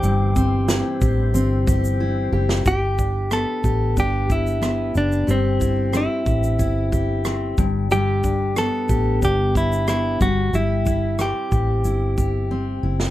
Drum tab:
SH |x-x-x-x-x-xx----|x-x-x-x-x-xxx-xx|x-x-x-xxx-x-x-x-|x-x-x-x-x-xxx-x-|
SD |----o----------o|----r-------r---|----r-------r---|----r-------r---|
BD |--o---o---o-----|o-o---o-o-o-----|--o---o-o-o---o-|--o---o-o-o---o-|

SH |x-x-x-x-x-x-----|
SD |----r----------o|
BD |--o---o---o-----|